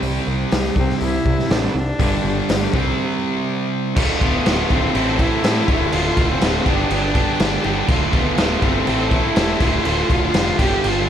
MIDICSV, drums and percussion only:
0, 0, Header, 1, 2, 480
1, 0, Start_track
1, 0, Tempo, 491803
1, 24, Time_signature, 4, 2, 24, 8
1, 10825, End_track
2, 0, Start_track
2, 0, Title_t, "Drums"
2, 24, Note_on_c, 9, 46, 53
2, 122, Note_off_c, 9, 46, 0
2, 503, Note_on_c, 9, 46, 59
2, 512, Note_on_c, 9, 38, 115
2, 601, Note_off_c, 9, 46, 0
2, 610, Note_off_c, 9, 38, 0
2, 742, Note_on_c, 9, 36, 84
2, 839, Note_off_c, 9, 36, 0
2, 875, Note_on_c, 9, 38, 31
2, 973, Note_off_c, 9, 38, 0
2, 982, Note_on_c, 9, 46, 52
2, 1080, Note_off_c, 9, 46, 0
2, 1226, Note_on_c, 9, 36, 85
2, 1324, Note_off_c, 9, 36, 0
2, 1359, Note_on_c, 9, 38, 33
2, 1456, Note_off_c, 9, 38, 0
2, 1466, Note_on_c, 9, 46, 55
2, 1475, Note_on_c, 9, 38, 114
2, 1564, Note_off_c, 9, 46, 0
2, 1573, Note_off_c, 9, 38, 0
2, 1947, Note_on_c, 9, 46, 59
2, 1948, Note_on_c, 9, 36, 112
2, 2045, Note_off_c, 9, 46, 0
2, 2046, Note_off_c, 9, 36, 0
2, 2430, Note_on_c, 9, 46, 63
2, 2439, Note_on_c, 9, 38, 111
2, 2528, Note_off_c, 9, 46, 0
2, 2537, Note_off_c, 9, 38, 0
2, 2670, Note_on_c, 9, 36, 107
2, 2767, Note_off_c, 9, 36, 0
2, 3868, Note_on_c, 9, 49, 119
2, 3868, Note_on_c, 9, 57, 81
2, 3872, Note_on_c, 9, 36, 114
2, 3966, Note_off_c, 9, 49, 0
2, 3966, Note_off_c, 9, 57, 0
2, 3969, Note_off_c, 9, 36, 0
2, 4111, Note_on_c, 9, 36, 84
2, 4114, Note_on_c, 9, 57, 59
2, 4209, Note_off_c, 9, 36, 0
2, 4211, Note_off_c, 9, 57, 0
2, 4351, Note_on_c, 9, 57, 82
2, 4360, Note_on_c, 9, 38, 116
2, 4449, Note_off_c, 9, 57, 0
2, 4457, Note_off_c, 9, 38, 0
2, 4590, Note_on_c, 9, 36, 77
2, 4593, Note_on_c, 9, 57, 55
2, 4688, Note_off_c, 9, 36, 0
2, 4691, Note_off_c, 9, 57, 0
2, 4828, Note_on_c, 9, 57, 78
2, 4926, Note_off_c, 9, 57, 0
2, 5066, Note_on_c, 9, 57, 62
2, 5067, Note_on_c, 9, 36, 79
2, 5163, Note_off_c, 9, 57, 0
2, 5165, Note_off_c, 9, 36, 0
2, 5307, Note_on_c, 9, 57, 77
2, 5315, Note_on_c, 9, 38, 120
2, 5404, Note_off_c, 9, 57, 0
2, 5413, Note_off_c, 9, 38, 0
2, 5545, Note_on_c, 9, 36, 102
2, 5549, Note_on_c, 9, 57, 58
2, 5643, Note_off_c, 9, 36, 0
2, 5646, Note_off_c, 9, 57, 0
2, 5781, Note_on_c, 9, 57, 86
2, 5879, Note_off_c, 9, 57, 0
2, 6022, Note_on_c, 9, 57, 66
2, 6023, Note_on_c, 9, 36, 91
2, 6119, Note_off_c, 9, 57, 0
2, 6120, Note_off_c, 9, 36, 0
2, 6260, Note_on_c, 9, 57, 95
2, 6269, Note_on_c, 9, 38, 116
2, 6358, Note_off_c, 9, 57, 0
2, 6366, Note_off_c, 9, 38, 0
2, 6501, Note_on_c, 9, 36, 94
2, 6503, Note_on_c, 9, 57, 60
2, 6598, Note_off_c, 9, 36, 0
2, 6600, Note_off_c, 9, 57, 0
2, 6739, Note_on_c, 9, 57, 82
2, 6837, Note_off_c, 9, 57, 0
2, 6977, Note_on_c, 9, 57, 66
2, 6979, Note_on_c, 9, 36, 79
2, 7075, Note_off_c, 9, 57, 0
2, 7076, Note_off_c, 9, 36, 0
2, 7218, Note_on_c, 9, 57, 85
2, 7227, Note_on_c, 9, 38, 113
2, 7316, Note_off_c, 9, 57, 0
2, 7325, Note_off_c, 9, 38, 0
2, 7455, Note_on_c, 9, 57, 60
2, 7553, Note_off_c, 9, 57, 0
2, 7695, Note_on_c, 9, 57, 81
2, 7696, Note_on_c, 9, 36, 121
2, 7792, Note_off_c, 9, 57, 0
2, 7794, Note_off_c, 9, 36, 0
2, 7936, Note_on_c, 9, 36, 89
2, 7937, Note_on_c, 9, 57, 59
2, 8034, Note_off_c, 9, 36, 0
2, 8035, Note_off_c, 9, 57, 0
2, 8175, Note_on_c, 9, 57, 88
2, 8183, Note_on_c, 9, 38, 119
2, 8272, Note_off_c, 9, 57, 0
2, 8281, Note_off_c, 9, 38, 0
2, 8414, Note_on_c, 9, 57, 58
2, 8415, Note_on_c, 9, 36, 85
2, 8512, Note_off_c, 9, 57, 0
2, 8513, Note_off_c, 9, 36, 0
2, 8655, Note_on_c, 9, 57, 78
2, 8752, Note_off_c, 9, 57, 0
2, 8892, Note_on_c, 9, 57, 55
2, 8894, Note_on_c, 9, 36, 88
2, 8990, Note_off_c, 9, 57, 0
2, 8992, Note_off_c, 9, 36, 0
2, 9134, Note_on_c, 9, 57, 81
2, 9143, Note_on_c, 9, 38, 119
2, 9232, Note_off_c, 9, 57, 0
2, 9241, Note_off_c, 9, 38, 0
2, 9372, Note_on_c, 9, 57, 95
2, 9374, Note_on_c, 9, 36, 100
2, 9470, Note_off_c, 9, 57, 0
2, 9472, Note_off_c, 9, 36, 0
2, 9614, Note_on_c, 9, 57, 81
2, 9712, Note_off_c, 9, 57, 0
2, 9856, Note_on_c, 9, 36, 85
2, 9858, Note_on_c, 9, 57, 62
2, 9953, Note_off_c, 9, 36, 0
2, 9956, Note_off_c, 9, 57, 0
2, 10091, Note_on_c, 9, 57, 94
2, 10099, Note_on_c, 9, 38, 119
2, 10188, Note_off_c, 9, 57, 0
2, 10197, Note_off_c, 9, 38, 0
2, 10336, Note_on_c, 9, 36, 101
2, 10338, Note_on_c, 9, 57, 99
2, 10434, Note_off_c, 9, 36, 0
2, 10436, Note_off_c, 9, 57, 0
2, 10579, Note_on_c, 9, 57, 86
2, 10676, Note_off_c, 9, 57, 0
2, 10825, End_track
0, 0, End_of_file